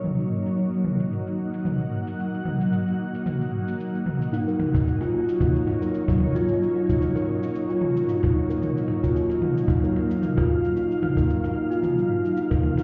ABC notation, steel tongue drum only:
X:1
M:4/4
L:1/16
Q:"Swing 16ths" 1/4=112
K:Ebm
V:1 name="Steel tongue drum"
z16 | z16 | E B2 E2 F G2 E z E B2 E2 F | G2 E z E B2 E2 F G2 E z E B- |
B E2 F G2 E z E B2 E2 F G2 | E z E B2 E2 F G2 E z E B2 E |]